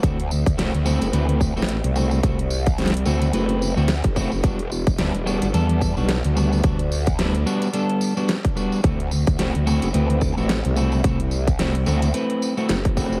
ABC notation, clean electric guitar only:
X:1
M:4/4
L:1/16
Q:"Swing 16ths" 1/4=109
K:Dmix
V:1 name="Clean electric guitar"
[A,CEF] z3 [A,CEF] z [A,CEF] z [A,CEB]3 [A,CEF] z2 [A,CEF]2 | [A,CEF] z3 [A,CEF] z [A,CEF] z [A,CEB]3 [A,CEF] z2 [A,CEF] z | [G,B,DF] z3 [G,B,DE] z [G,B,DF] z [G,B,DA]3 [G,B,DF] z2 [G,B,DF]2 | [G,B,DF] z3 [G,B,DE] z [G,B,DF] z [G,B,DA]3 [G,B,DF] z2 [G,B,DF]2 |
[A,CEF] z3 [A,CEF] z [A,CEF] z [A,CEB]3 [A,CEF] z2 [A,CEF]2 | [A,CEF] z3 [A,CEF] z [A,CEF] z [A,CEB]3 [A,CEF] z2 [A,CEF]2 |]